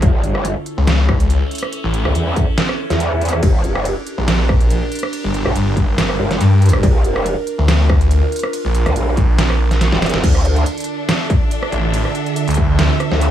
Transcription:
0.02 A1 C#4 E4 A4, kick, closed hi-hat
0.24 G1, closed hi-hat
0.35 cross-stick
0.45 closed hi-hat
0.66 closed hi-hat
0.78 C#2
0.87 snare, closed hi-hat
1.09 kick, cross-stick
1.20 closed hi-hat
1.30 closed hi-hat
1.51 closed hi-hat
1.55 closed hi-hat
1.58 closed hi-hat
1.63 cross-stick
1.73 closed hi-hat
1.84 A1
1.94 closed hi-hat
2.05 C#2, cross-stick
2.15 E2, closed hi-hat
2.36 kick, closed hi-hat
2.58 snare, closed hi-hat
2.69 cross-stick
2.90 E2, snare, closed hi-hat
3.00 closed hi-hat
3.21 closed hi-hat
3.25 closed hi-hat
3.29 closed hi-hat
3.33 cross-stick
3.43 G1 D4 G4 A#4, kick, closed hi-hat, ride
3.64 F1, closed hi-hat
3.75 cross-stick
3.85 closed hi-hat, ride
4.07 closed hi-hat
4.18 A#1
4.28 snare, closed hi-hat, ride
4.49 kick, cross-stick
4.61 closed hi-hat
4.70 closed hi-hat, ride
4.92 closed hi-hat
4.95 closed hi-hat
4.99 closed hi-hat
5.03 cross-stick
5.13 closed hi-hat, ride
5.24 G1
5.34 closed hi-hat
5.46 A#1, cross-stick
5.55 G1, closed hi-hat, ride
5.77 kick, closed hi-hat
5.98 snare, closed hi-hat, ride
6.10 cross-stick
6.19 G1
6.31 snare, closed hi-hat
6.41 G2, closed hi-hat, ride
6.62 closed hi-hat
6.66 closed hi-hat
6.69 closed hi-hat
6.73 cross-stick
6.83 A#1 D4 F4, kick, closed hi-hat, ride
7.04 F1, closed hi-hat
7.16 cross-stick
7.26 closed hi-hat, ride
7.47 closed hi-hat
7.58 D2
7.68 snare, closed hi-hat, ride
7.90 kick, cross-stick
8.01 closed hi-hat
8.11 closed hi-hat, ride
8.32 closed hi-hat
8.36 closed hi-hat
8.39 closed hi-hat
8.43 cross-stick
8.53 closed hi-hat, ride
8.65 A#1
8.75 closed hi-hat
8.86 D2, cross-stick, closed hi-hat
8.96 A#1, closed hi-hat, ride
9.17 A#1, kick, closed hi-hat
9.39 snare, closed hi-hat, ride
9.50 A#1, cross-stick
9.71 snare, closed hi-hat
9.81 snare, closed hi-hat, ride
9.92 F1, snare
10.02 snare, closed hi-hat
10.06 closed hi-hat
10.09 closed hi-hat
10.14 F1, snare
10.24 D2 D3 D4 F4 A4 A5, kick, closed hi-hat, ride, crash
10.35 cross-stick
10.45 closed hi-hat
10.56 A4, closed hi-hat
10.66 closed hi-hat, ride
10.78 closed hi-hat
10.80 closed hi-hat
10.84 closed hi-hat
11.03 E5
11.09 snare, closed hi-hat, ride
11.30 kick, closed hi-hat
11.51 closed hi-hat, ride
11.63 cross-stick
11.72 A1, closed hi-hat
11.94 closed hi-hat, ride
12.05 cross-stick
12.15 closed hi-hat
12.26 closed hi-hat
12.36 closed hi-hat, ride
12.48 D2, closed hi-hat
12.50 closed hi-hat
12.54 kick, closed hi-hat
12.79 snare, closed hi-hat, ride
13.00 cross-stick, closed hi-hat
13.11 D2, snare
13.21 closed hi-hat, ride

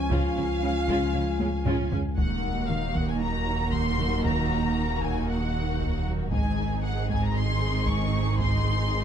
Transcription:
Already playing: C#2 F3 C#4 G#5
0.09 C#2 C#3 C#4 F4 F5, taiko
0.35 C#2 C#3 F3 C#4
0.62 C#2 C#3 G#3 C#4
0.87 C#2 C#3 C#4 F4, taiko
1.13 C#2 C#3 G#3 C#4
1.39 C#2 C#3 G#3 C#4, taiko high
1.65 C#2 C#3 C#4 F4, taiko low-mid
1.91 C#2 C#3 G#3 C#4, taiko low
2.17 D#1 D#2 D#3 A#3 D#4 F#4 A#4 F#5, taiko
2.44 D#4
2.68 D#4 F5, taiko mid
2.95 D#3 F#5, taiko
3.09 G#5
3.21 F#3 A#5
3.47 D#4
3.73 D#3 C6, taiko
3.99 F#3, taiko mid
4.24 D#3 A#5, taiko
4.51 D#4
4.77 D#4
5.02 D#3 G#5, taiko
5.29 F#3 F#5
5.55 D#4
5.80 D#3, taiko
6.07 F#3
6.31 G#1 G#2 D#3 G#3 C4 D#4 G#4 G#5, taiko
6.58 G#4
6.84 G#4 F#5
7.09 G#3 G#5, taiko
7.23 A#5
7.36 C4 C6
7.61 G#4
7.87 G#3 C#6, taiko
8.13 C4
8.39 G#3 C6, taiko
8.65 G#4
8.91 G#4

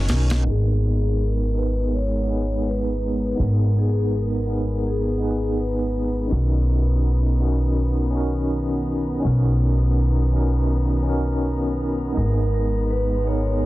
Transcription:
Already playing: D#3 C#4 D#4 F#4 A#4 A#5
0.09 B1, snare, ride
0.30 snare, ride
0.42 G#1 G#3 B3 D#4 A#5
0.47 G#4 A#4
1.21 A#4
1.54 B3 D#4 G#4 A#4
1.58 B4
1.94 C#5
2.25 B3 D#4
2.29 G#4 B4
2.68 B4
3.35 B3 D#4
3.39 G#1 G#4 A#4
3.78 G#4
4.15 A#4
4.46 B3 D#4 G#4 A#4
4.80 A#4
4.88 G#4
5.18 B3 D#4
5.22 G#4 B4
5.60 B4
6.28 D#3 C#4 D#4
6.32 B1 F#4 A#4
7.39 C#4 D#4 F#4 A#4
8.11 C#4 D#4
8.15 F#4 A#4
9.20 C#4 D#4
9.24 B1 F#4 A#4
10.32 C#4 D#4 F#4 A#4
11.02 C#4 D#4
11.07 F#4 A#4
12.12 B3 D#4
12.17 G#1 G#3 G#4 A#4 A#5
12.54 A#4
12.90 B4
13.24 B3 D#4 G#4 A#4 C#5

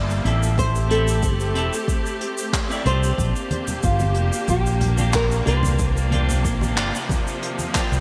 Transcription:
Already playing: G1 F3 G3 A#3 D5 A5
0.10 shaker
0.24 A1 C4 E4 G4 A4, closed hi-hat
0.43 shaker
0.58 A3 C4 G4 C5, kick, shaker
0.76 shaker
0.89 C4 E4 G4 A4, closed hi-hat
1.08 shaker
1.23 G1, kick, shaker
1.40 shaker
1.54 E1 C4 E4 G4 A4, closed hi-hat
1.73 shaker
1.88 kick, shaker
2.06 shaker
2.21 closed hi-hat
2.38 shaker
2.53 kick, clap, shaker
2.69 C4 E4 G4 D5, shaker
2.83 C2 C4 D4 C5, closed hi-hat
2.88 F4 G4
3.04 shaker
3.18 A#1 A#3 D4 G4, kick, shaker
3.36 shaker
3.51 closed hi-hat, high conga
3.68 low conga, shaker
3.83 G1 F4, kick, shaker
4.00 high bongo, high conga, shaker
4.14 F1, closed hi-hat
4.33 high bongo, shaker
4.48 A#1 G4, kick, high conga, shaker
4.66 shaker
4.81 closed hi-hat, low conga
4.97 C4 D4 F4 G4, high conga, shaker
5.13 A#4, kick, clap, shaker
5.32 shaker
5.45 C2 A#3 D4 F4 G4 C5, closed hi-hat, high bongo
5.63 high conga, low conga, shaker
5.79 C3 F3, kick, shaker
5.97 shaker
6.11 A#3 D4 F4 G4, closed hi-hat, high conga
6.29 low conga, shaker
6.45 A#1, kick, shaker
6.61 high bongo, high conga, shaker
6.76 G1 A#3 D4 F4 G4, clap, closed hi-hat
6.95 shaker
7.09 kick, high conga, shaker
7.28 shaker
7.43 closed hi-hat
7.59 high conga, shaker
7.74 A#3 D4 F4 G4, kick, clap, shaker
7.92 C2, shaker

